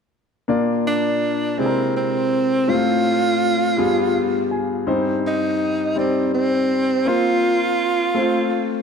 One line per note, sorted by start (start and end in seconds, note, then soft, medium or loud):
0.48 1.54 A#2 medium
0.48 1.15 A#3 medium
0.48 1.15 D4 medium
0.48 1.15 F4 medium
0.48 1.15 D5 medium
0.87 1.60 D4 medium
1.58 2.64 C3 medium
1.58 2.24 G#3 medium
1.58 2.24 C4 soft
1.58 1.95 C4 medium
1.58 2.25 E4 soft
1.58 1.65 G#4 soft
1.66 2.28 A#4 medium
1.96 2.71 C4 medium
2.67 3.73 A2 soft
2.67 2.74 G3 soft
2.67 3.34 C4 medium
2.67 3.35 F4 medium
2.67 4.51 F4 medium
2.67 3.35 C5 medium
2.73 3.37 A3 medium
3.77 4.83 G2 medium
3.77 4.43 G3 medium
3.77 4.44 B3 medium
3.77 4.44 F4 medium
3.77 4.44 G#4 medium
4.14 4.48 F5 medium
4.51 4.85 G#5 soft
4.87 5.92 G2 medium
4.87 5.53 G3 medium
4.87 5.53 C4 medium
4.87 5.53 D#4 medium
4.87 5.54 C5 medium
5.27 5.94 D#4 medium
5.96 6.62 G3 medium
5.96 6.63 C4 soft
5.96 6.32 C4 medium
5.96 6.63 D#4 soft
5.96 6.63 D5 medium
6.34 7.10 C4 medium
7.05 7.72 A#3 medium
7.05 7.72 C4 medium
7.05 7.72 F4 medium
7.05 8.82 F4 medium
7.05 7.73 C5 medium
8.14 8.82 A3 medium
8.14 8.82 C4 medium
8.14 8.82 F4 medium
8.14 8.82 C5 medium